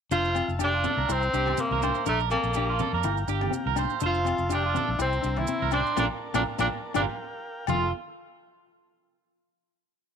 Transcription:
0.11 fingered electric bass F1, clean electric guitar D4 C5, tenor saxophone F4, transistor combo organ E5 F5 A5, cajon bass, maracas
0.25 maracas
0.35 clean electric guitar C4, cajon slap, low agogo, maracas
0.48 fingered electric bass F1, maracas
0.59 clean electric guitar D4 G4, cajon bass, cajon slap, low agogo, maracas
0.64 tenor saxophone D4
0.74 clean electric guitar F4
0.84 clean electric guitar C4 A4, cajon bass, high conga, low conga, maracas
0.97 fingered electric bass C2, clean electric guitar A#4
1.08 fingered electric bass C2, tenor saxophone C4, clean electric guitar E4, transistor combo organ C5 E5 A#5, cajon bass, cajon slap, low agogo, maracas
1.22 maracas
1.33 fingered electric bass C2, clean electric guitar D4 G4, maracas
1.46 cajon slap, high conga, low agogo
1.57 tenor saxophone A#3, clean electric guitar C4, cajon bass, maracas
1.71 fingered electric bass C2, clean electric guitar A#4, high conga
1.82 clean electric guitar D4 C5, cajon slap, low conga, low agogo, maracas
1.95 maracas
2.05 fingered electric bass A#1, tenor saxophone A3, clean electric guitar D4 A#4, transistor combo organ D5 A5, cajon bass, maracas
2.20 maracas
2.30 tenor saxophone A#3, clean electric guitar C4 A4, cajon slap, low agogo, maracas
2.43 fingered electric bass A#1, maracas
2.54 clean electric guitar D4 G4, cajon bass, cajon slap, low agogo, maracas
2.70 clean electric guitar F4
2.79 clean electric guitar C4 A4, cajon bass, high conga, low conga, maracas
2.93 fingered electric bass F2, clean electric guitar A#4
3.03 fingered electric bass G1, clean electric guitar E4, transistor combo organ F5 G5, cajon bass, cajon slap, low agogo, maracas
3.17 maracas
3.28 fingered electric bass G1, clean electric guitar D4 G4, cajon slap, maracas
3.41 cajon slap, high conga, low agogo
3.51 clean electric guitar C4, cajon bass, maracas
3.66 fingered electric bass C2, clean electric guitar A#4, high conga
3.76 clean electric guitar D4 C5, cajon slap, low conga, low agogo, maracas
3.90 maracas
3.99 fingered electric bass F1, clean electric guitar D4, transistor combo organ E5 A5, cajon bass, maracas
4.04 tenor saxophone F4, clean electric guitar C5
4.14 maracas
4.25 clean electric guitar C4, muted clean electric guitar stroke, cajon slap, low agogo, maracas
4.38 fingered electric bass F1, maracas
4.49 clean electric guitar D4 G4, cajon bass, cajon slap, low agogo, maracas
4.54 tenor saxophone D4
4.66 clean electric guitar F4
4.74 clean electric guitar C4 A4, cajon bass, high conga, low conga, maracas
4.88 fingered electric bass A#1
4.99 fingered electric bass C2, tenor saxophone C4, clean electric guitar E4, transistor combo organ C5 A#5, cajon bass, cajon slap, low agogo, maracas
5.13 maracas
5.22 fingered electric bass C2, clean electric guitar D4, maracas
5.26 muted clean electric guitar stroke
5.36 tenor saxophone E4, cajon slap, high conga, low agogo
5.47 clean electric guitar C4, cajon bass, maracas
5.62 fingered electric bass C2, clean electric guitar A#4, high conga
5.71 clean electric guitar D4 C5, tenor saxophone D4, cajon slap, low conga, low agogo, maracas
5.86 maracas
5.95 fingered electric bass A#1, clean electric guitar A#3 D4 F4 A4 A#4, transistor combo organ A#4 D5 A5, cajon bass, cajon slap, low conga, low agogo, maracas
5.99 tenor saxophone D4
6.34 fingered electric bass A#1, clean electric guitar A#3 D4 F4 A4 A#4, tenor saxophone D4, cajon bass, cajon slap, low conga, low agogo, maracas
6.58 fingered electric bass A#1, clean electric guitar A#3 D4 F4 A4 A#4, tenor saxophone D4, cajon bass, cajon slap, low conga, low agogo, maracas
6.94 fingered electric bass G1, clean electric guitar D4 F4 G4 A#4, tenor saxophone D4, transistor combo organ F5 G5, cajon bass, cajon slap, low conga, low agogo, maracas
7.67 fingered electric bass F1, clean electric guitar F3 F4, tenor saxophone F4, transistor combo organ A4 E5 F5, cajon bass, high conga, low agogo, maracas

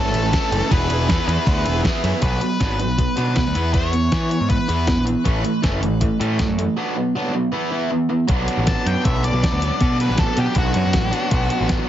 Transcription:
Already playing: picked electric bass G#1, distorted electric guitar E3 A3 C#4 A4, lead electric guitar A4
0.06 snare
0.14 picked electric bass A1, ride
0.31 distorted electric guitar E3 A3 C#4 A4, kick, snare, ride
0.50 picked electric bass F#1, distorted electric guitar A3 C#4 A4, ride
0.69 picked electric bass E1, distorted electric guitar E3 B3 E4 G#4, lead electric guitar B4, kick, ride
0.88 picked electric bass E1, distorted electric guitar B3 E4 G#4, ride
1.07 picked electric bass E2, distorted electric guitar E3 B3 E4 G#4, kick, snare, ride
1.26 picked electric bass E2, distorted electric guitar B3 E4 G#4, ride
1.46 picked electric bass D2, kick, ride
1.65 picked electric bass E1, ride
1.84 distorted electric guitar E3 B3 E4 G#4, kick, snare, ride
2.03 picked electric bass F#2, distorted electric guitar B3 E4 G#4, ride
2.22 picked electric bass B1, distorted electric guitar F#3 B3 D4, lead electric guitar B4, kick, closed hi-hat
2.41 distorted electric guitar F#3 B3, closed hi-hat
2.60 picked electric bass G#1, distorted electric guitar F#3 B3 D4, kick, snare, closed hi-hat
2.80 distorted electric guitar F#3 B3, closed hi-hat
2.89 picked electric bass B1
2.98 distorted electric guitar F#3 B3, kick, closed hi-hat
3.16 picked electric bass B2, distorted electric guitar F#3 B3 D4, closed hi-hat
3.35 distorted electric guitar F#3 B3, lead electric guitar B4, kick, snare, closed hi-hat
3.47 picked electric bass D2
3.55 picked electric bass E2, distorted electric guitar E3 B3 E4, closed hi-hat
3.73 distorted electric guitar E3 B3 E4, lead electric guitar C#5, kick, closed hi-hat
3.92 distorted electric guitar E3 B3, closed hi-hat
4.11 distorted electric guitar E3 B3 E4, picked electric bass E3, kick, snare, closed hi-hat
4.30 distorted electric guitar E3 B3, closed hi-hat
4.41 picked electric bass G#2
4.49 distorted electric guitar E3 B3, lead electric guitar B4, kick, closed hi-hat
4.68 picked electric bass E2, distorted electric guitar E3 B3 E4, closed hi-hat
4.87 distorted electric guitar E3 B3, kick, snare, closed hi-hat
4.97 picked electric bass A#1
5.05 distorted electric guitar E3 B3, closed hi-hat
5.24 picked electric bass A1, distorted electric guitar E3 A3 C#4, kick, closed hi-hat
5.44 distorted electric guitar E3 A3, closed hi-hat
5.62 picked electric bass F#1, distorted electric guitar E3 A3 C#4, kick, snare, closed hi-hat
5.81 distorted electric guitar E3 A3, closed hi-hat
5.91 picked electric bass A1
6.01 distorted electric guitar E3 A3, kick, closed hi-hat
6.20 picked electric bass A2, distorted electric guitar E3 A3 C#4, closed hi-hat
6.39 distorted electric guitar E3 A3, kick, snare, closed hi-hat
6.48 picked electric bass F#2
6.58 distorted electric guitar E3 A3, closed hi-hat
6.77 distorted electric guitar F#3 B3 D4
6.97 distorted electric guitar F#3 B3
7.15 distorted electric guitar F#3 B3 D4
7.34 distorted electric guitar F#3 B3
7.52 distorted electric guitar E3 B3 E4
7.71 distorted electric guitar E3 B3 E4
7.91 distorted electric guitar E3 B3
8.09 distorted electric guitar E3 B3
8.28 picked electric bass B1, distorted electric guitar F#3 B3 D4, kick, closed hi-hat
8.48 closed hi-hat
8.57 picked electric bass A1
8.67 lead electric guitar A5, kick, snare, closed hi-hat
8.86 picked electric bass F#2, lead electric guitar G5, closed hi-hat
9.04 picked electric bass B1, lead electric guitar E5, kick, closed hi-hat
9.24 lead electric guitar D5, closed hi-hat
9.33 picked electric bass B1
9.43 kick, snare, closed hi-hat
9.52 picked electric bass D2
9.60 distorted electric guitar F#3 B3 D4, closed hi-hat
9.78 picked electric bass B2, distorted electric guitar F#3 B3 D4, kick, closed hi-hat
10.00 lead electric guitar B4, closed hi-hat
10.09 picked electric bass A1
10.18 lead electric guitar A4, kick, snare, closed hi-hat
10.37 picked electric bass B2, lead electric guitar G4, closed hi-hat
10.55 picked electric bass B1, lead electric guitar F#4, kick, closed hi-hat
10.74 picked electric bass F#2, closed hi-hat
10.86 picked electric bass F#2
10.93 picked electric bass A1, kick, snare, closed hi-hat
11.11 distorted electric guitar F#3 B3 D4, closed hi-hat
11.31 picked electric bass B1, distorted electric guitar F#3 B3 D4, kick, closed hi-hat
11.50 closed hi-hat
11.60 picked electric bass A1
11.69 kick, snare, closed hi-hat
11.80 snare

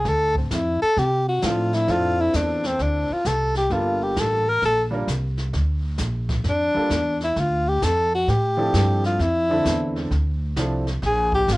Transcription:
0.05 upright bass D2, tenor saxophone A4, brush sweep, kick, snare
0.35 tenor saxophone C4, kick
0.51 upright bass F2, tenor saxophone E4, kick, snare, hi-hat pedal
0.82 tenor saxophone A4, muted upright bass stroke
0.97 upright bass C3, tenor saxophone G4, brush sweep, kick, snare
1.29 tenor saxophone F#4
1.42 upright bass A2, grand piano F3 C4 D4 E4 A4, tenor saxophone F4, kick, snare, hi-hat pedal
1.73 tenor saxophone E4, snare
1.88 upright bass F2, grand piano C4 D4 E4 F4 A4, tenor saxophone F4, brush sweep, kick, snare
2.21 tenor saxophone E4
2.33 upright bass E2, tenor saxophone D4, kick, snare, hi-hat pedal
2.63 tenor saxophone C4, snare
2.79 upright bass D2, tenor saxophone D4, brush sweep, kick, snare
3.10 tenor saxophone F4, muted upright bass stroke
3.25 upright bass C2, tenor saxophone A4, kick, snare, hi-hat pedal
3.55 tenor saxophone G4, snare
3.70 upright bass G1, grand piano G3 A#3 D4 F4 A4, tenor saxophone F4, brush sweep, kick, snare
4.03 tenor saxophone G4
4.16 upright bass A1, tenor saxophone A4, kick, snare, hi-hat pedal
4.49 tenor saxophone A#4
4.62 upright bass A#1, tenor saxophone A4, brush sweep, kick, snare
4.91 grand piano G3 A#3 D4 F4 A#4
5.08 upright bass C2, kick, snare, hi-hat pedal
5.37 snare
5.53 upright bass D2, brush sweep, kick, snare
5.98 upright bass A#1, kick, snare, hi-hat pedal
6.29 kick, snare
6.44 upright bass F2, brush sweep, kick, snare
6.50 tenor saxophone D4
6.75 grand piano G3 A#3 D4 F4 A4, muted upright bass stroke
6.90 upright bass E2, kick, snare, hi-hat pedal
7.21 snare
7.25 tenor saxophone E4
7.36 upright bass D2, brush sweep, kick, snare
7.40 tenor saxophone F4
7.68 tenor saxophone G4
7.82 upright bass F2, tenor saxophone A4, kick, snare, hi-hat pedal
8.15 tenor saxophone F#4
8.28 upright bass A2, tenor saxophone G4, brush sweep, kick, snare
8.57 grand piano F3 C4 D4 E4 A4
8.74 upright bass G2, kick, snare, hi-hat pedal
9.04 tenor saxophone F4, snare
9.19 upright bass F2, tenor saxophone E4, brush sweep, kick, snare
9.50 grand piano D3 C4 D4 E4 A4
9.65 upright bass E2, kick, snare, hi-hat pedal
9.96 snare
10.11 upright bass D2, brush sweep, kick, snare
10.56 upright bass C2, grand piano F3 C4 D4 E4 A4, kick, snare, hi-hat pedal
10.87 snare
11.02 upright bass A#1, brush sweep, kick, snare
11.06 tenor saxophone G#4
11.32 tenor saxophone G4, kick
11.48 upright bass G#1, kick, snare, hi-hat pedal
11.53 tenor saxophone F4

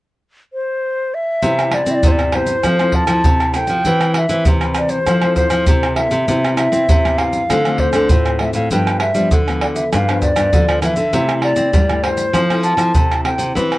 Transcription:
0.53 flute C5
1.14 flute E5
1.42 nylon-string guitar C3 G3 B3 E4, pandeiro, maracas, surdo
1.59 pandeiro, tamborim, maracas
1.72 nylon-string guitar G3 B3 E4, flute D5, pandeiro, tamborim
1.86 nylon-string guitar C4, pandeiro, maracas
1.91 flute D5 E5
2.03 nylon-string guitar G2 C3 G3 B3 E4, pandeiro, maracas, surdo
2.08 flute C5 D5
2.19 pandeiro, tamborim, maracas
2.32 nylon-string guitar G3 B3 E4, flute C5, pandeiro, tamborim
2.47 pandeiro, maracas
2.63 nylon-string guitar F3 C4 E4 A4, pandeiro, tamborim, maracas, surdo
2.79 nylon-string guitar C4 E4 A4, pandeiro, tamborim, maracas
2.92 flute A5, pandeiro, surdo
3.07 nylon-string guitar F3 C4 E4 A4, pandeiro, tamborim, maracas
3.24 nylon-string guitar C3, pandeiro, maracas, surdo
3.40 pandeiro, tamborim, maracas
3.54 nylon-string guitar C4 E4 A4, flute G5, pandeiro, tamborim, maracas
3.67 nylon-string guitar F3, pandeiro, maracas
3.85 nylon-string guitar E3 C4 G4 B4, pandeiro, maracas, surdo
4.01 pandeiro, tamborim, maracas
4.14 flute E5, pandeiro, tamborim
4.29 nylon-string guitar E3 C4 G4 B4, pandeiro, maracas
4.45 nylon-string guitar C3 E3, pandeiro, maracas, surdo
4.61 nylon-string guitar C4 G4 B4, pandeiro, tamborim, maracas
4.75 flute D5, pandeiro, tamborim, maracas
4.89 flute C5, pandeiro, maracas
5.07 nylon-string guitar F3 C4 E4 A4, pandeiro, tamborim, maracas, surdo
5.22 nylon-string guitar C4 E4 A4, pandeiro, tamborim, maracas
5.36 flute C5, pandeiro, maracas, surdo
5.50 nylon-string guitar F3, pandeiro, tamborim, maracas
5.67 nylon-string guitar C3 C4 E4 A4, pandeiro, maracas, surdo
5.83 pandeiro, tamborim, maracas
5.96 nylon-string guitar C4 E4 A4, flute E5, pandeiro, tamborim
6.11 nylon-string guitar C3, pandeiro, maracas
6.28 nylon-string guitar C3 G3 B3 E4, pandeiro, maracas, surdo
6.45 pandeiro, tamborim, maracas
6.57 flute E5, pandeiro, tamborim, maracas
6.72 nylon-string guitar G3 B3 C4 E4, pandeiro, maracas
6.89 nylon-string guitar G2 C3, pandeiro, maracas, surdo
7.04 nylon-string guitar G3 B3 E4, pandeiro, tamborim, maracas
7.18 flute F5, pandeiro, tamborim
7.33 pandeiro, maracas
7.50 nylon-string guitar D3 A3 C4 F4, pandeiro, tamborim, maracas, surdo
7.65 nylon-string guitar A3 C4 F4, pandeiro, tamborim, maracas
7.78 flute C5, pandeiro, surdo
7.93 nylon-string guitar D3, pandeiro, tamborim, maracas
8.09 nylon-string guitar A2 A3 C4 F4, pandeiro, maracas, surdo
8.26 pandeiro, tamborim, maracas
8.39 nylon-string guitar A3 C4 F4, flute E5, pandeiro, tamborim
8.53 nylon-string guitar A2, flute F5, pandeiro, maracas
8.70 nylon-string guitar G2 F3 B3 D4, flute G5, pandeiro, maracas, surdo
8.87 pandeiro, tamborim, maracas
9.00 flute E5, pandeiro, tamborim
9.14 nylon-string guitar F3 G3 B3 D4, pandeiro, maracas
9.31 nylon-string guitar D3, pandeiro, maracas, surdo
9.48 nylon-string guitar F3 B3 D4, pandeiro, tamborim, maracas
9.61 flute D5, pandeiro, tamborim
9.75 flute E5, pandeiro, maracas
9.92 nylon-string guitar G2, flute F5, pandeiro, tamborim, maracas, surdo
10.09 nylon-string guitar F3 B3 D4, pandeiro, tamborim, maracas
10.22 flute D5, pandeiro, maracas, surdo
10.36 nylon-string guitar G2, pandeiro, tamborim, maracas
10.53 nylon-string guitar D3 F3 B3 D4, pandeiro, maracas, surdo
10.68 nylon-string guitar F3, pandeiro, tamborim, maracas
10.82 nylon-string guitar E3 F3 B3 D4, flute E5, pandeiro, tamborim, maracas
10.96 nylon-string guitar D3, pandeiro, maracas
11.13 nylon-string guitar C3 G3 A3 E4, pandeiro, maracas, surdo
11.29 pandeiro, tamborim, maracas
11.42 flute D5, pandeiro, tamborim
11.56 nylon-string guitar G3 A3 C4 E4, pandeiro, maracas
11.73 nylon-string guitar G2 G3, pandeiro, maracas, surdo
11.89 nylon-string guitar G3 A3 E4, pandeiro, tamborim, maracas
12.03 flute C5, pandeiro, tamborim
12.17 pandeiro, maracas
12.34 nylon-string guitar F3 C4 E4 A4, pandeiro, tamborim, maracas, surdo
12.51 nylon-string guitar C4 E4 A4, pandeiro, tamborim, maracas
12.64 flute A5, pandeiro, maracas
12.77 nylon-string guitar F3, pandeiro, tamborim, maracas
12.94 nylon-string guitar C3 C4 E4 A4, pandeiro, maracas, surdo
13.11 pandeiro, tamborim, maracas
13.24 nylon-string guitar C4 E4 A4, flute G5, pandeiro, tamborim
13.38 nylon-string guitar C3, pandeiro, maracas
13.55 nylon-string guitar E3 C4 G4 B4, pandeiro, maracas, surdo
13.72 pandeiro, tamborim, maracas

